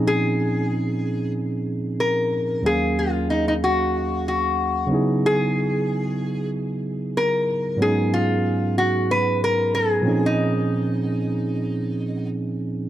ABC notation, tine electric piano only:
X:1
M:4/4
L:1/8
Q:"Swing 16ths" 1/4=93
K:Bbphr
V:1 name="Tine electric piano"
[B,,F,=CDEA]6- [B,,F,CDEA] z | [E,,G,B,DAf]6- [E,,G,B,DAf] [D,G,CE_FA]- | [D,G,CE_FA]6- [D,G,CEFA] z | [A,,G,CDEA]6- [A,,G,CDEA] [B,,F,=CDEA]- |
[B,,F,=CDEA]6- [B,,F,CDEA] z |]